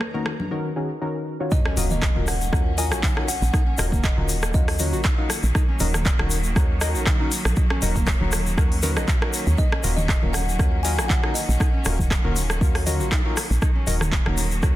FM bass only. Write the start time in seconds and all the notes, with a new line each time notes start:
1.77 D#1
2.16 D#1
2.53 D#2
2.92 A#1
3.42 A#1
3.78 D#1
4.17 D#1
4.54 D#2
4.93 A#1
5.43 A#1
5.80 D#1
6.19 D#1
6.56 D#2
6.95 A#1
7.45 A#1
7.82 D#1
8.21 D#1
8.58 D#2
8.97 A#1
9.47 D#2
9.84 D#1
10.23 D#1
10.59 D#2
10.98 A#1
11.49 A#1
11.86 D#1
12.25 D#1
12.61 D#2
13.00 A#1
13.51 A#1
13.87 D#1
14.26 D#1
14.63 D#2